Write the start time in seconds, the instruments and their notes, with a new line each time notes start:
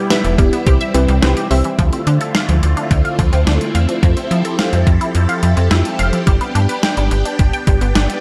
Already playing: string machine G3 B3 E4
0.10 synth pluck B3 E4 G4 B4, synth arpeggio sound E5, snare, closed hi-hat
0.24 fm bass E1, synth arpeggio sound E3, closed hi-hat
0.38 fm bass E1, synth arpeggio sound G3, synth pluck B3 E4 G4 D5, kick, closed hi-hat
0.53 synth arpeggio sound B3, closed hi-hat
0.66 fm bass C2, synth pluck C4 E4 G4 C5, string machine C4, synth arpeggio sound G4, kick, closed hi-hat
0.81 synth arpeggio sound E5, closed hi-hat
0.94 fm bass C2, synth arpeggio sound E3, synth pluck C4 E4 G4 B4, closed hi-hat
1.08 fm bass C2, synth arpeggio sound G3, closed hi-hat
1.22 fm bass C2, synth pluck C4 E4 G4 B4, synth arpeggio sound C4, snare, closed hi-hat
1.37 synth arpeggio sound G4, closed hi-hat
1.51 fm bass C2, synth pluck C4 E4 G4 C5, synth arpeggio sound E5, open hi-hat
1.64 synth arpeggio sound E3, closed hi-hat
1.78 fm bass D2, string machine D3 A3 C4 E4 F4, synth arpeggio sound F3, kick, closed hi-hat
1.93 synth arpeggio sound C4, closed hi-hat
2.07 fm bass D3, synth arpeggio sound D4, closed hi-hat
2.21 synth arpeggio sound A4, closed hi-hat
2.35 synth arpeggio sound F5, snare, closed hi-hat
2.49 fm bass D2, synth arpeggio sound F3, closed hi-hat
2.63 fm bass D2, closed hi-hat
2.77 synth arpeggio sound D4, closed hi-hat
2.91 fm bass D2, kick, closed hi-hat
3.05 synth arpeggio sound F5, closed hi-hat
3.19 fm bass D2, synth arpeggio sound F3, kick, closed hi-hat
3.33 fm bass D2, synth arpeggio sound C4, closed hi-hat
3.47 fm bass D2, synth arpeggio sound D4, snare, closed hi-hat
3.61 closed hi-hat
3.75 fm bass E2, synth arpeggio sound F5, closed hi-hat
3.89 synth arpeggio sound F3, closed hi-hat
4.03 fm bass F2, synth arpeggio sound F3, string machine F3 G4 A4, kick, closed hi-hat
4.17 synth arpeggio sound C4, closed hi-hat
4.31 fm bass F3, synth arpeggio sound E4, closed hi-hat
4.45 synth arpeggio sound A4, closed hi-hat
4.59 synth arpeggio sound F5, snare, closed hi-hat
4.73 fm bass F2, synth arpeggio sound F3, closed hi-hat
4.87 fm bass F2, kick, closed hi-hat
5.01 synth arpeggio sound E4, closed hi-hat
5.15 fm bass F2, closed hi-hat
5.29 synth arpeggio sound F5, closed hi-hat
5.43 fm bass F2, synth arpeggio sound F3, closed hi-hat
5.57 fm bass F2, synth arpeggio sound C4, closed hi-hat
5.71 fm bass F2, synth arpeggio sound E4, snare, closed hi-hat
5.85 closed hi-hat
5.99 fm bass F1, synth arpeggio sound F5, closed hi-hat
6.13 synth arpeggio sound F3, closed hi-hat
6.27 fm bass G1, synth arpeggio sound G3, string machine B3 D4, kick, closed hi-hat
6.41 synth arpeggio sound B3, closed hi-hat
6.55 fm bass G2, synth arpeggio sound D4, closed hi-hat
6.69 synth arpeggio sound B4, closed hi-hat
6.83 synth arpeggio sound G5, snare, closed hi-hat
6.97 fm bass G1, synth arpeggio sound G3, closed hi-hat
7.11 fm bass G1, closed hi-hat
7.25 synth arpeggio sound D4, closed hi-hat
7.39 fm bass G1, kick, closed hi-hat
7.53 synth arpeggio sound G5, closed hi-hat
7.67 fm bass G1, synth arpeggio sound G3, kick, closed hi-hat
7.81 fm bass G1, synth arpeggio sound B3, closed hi-hat
7.95 fm bass G1, synth arpeggio sound D4, snare, closed hi-hat
8.10 closed hi-hat